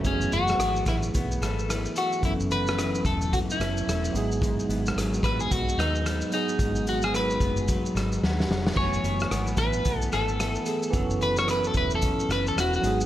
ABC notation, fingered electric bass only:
X:1
M:4/4
L:1/16
Q:"Swing 16ths" 1/4=110
K:F#dor
V:1 name="Fingered electric bass" clef=bass
F,,,2 F,,,2 G,,,2 A,,,2 B,,,2 G,,,4 z2 | F,,,6 E,,,3 z F,,,2 E,,,2 G,,,2- | G,,,2 G,,,2 G,,,2 A,,,2 B,,,2 D,,4 z2 | G,,,6 F,,,3 z G,,,2 D,,2 ^E,,,2 |
F,,,2 F,,,2 G,,,2 A,,,2 B,,,2 G,,,4 z2 | F,,,6 E,,,3 z F,,,2 E,,,2 G,,,2 |]